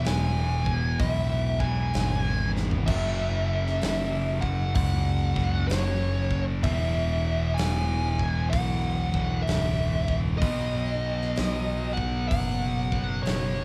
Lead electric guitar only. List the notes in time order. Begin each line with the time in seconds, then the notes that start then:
0.06 G#5
1.00 E5
1.60 G#5
2.86 E5
4.41 F#5
4.75 F#5
5.68 C#5
6.63 E5
7.54 G#5
8.50 F#5
9.42 E5
10.38 D#5
11.93 F#5
12.29 F#5
13.23 C#5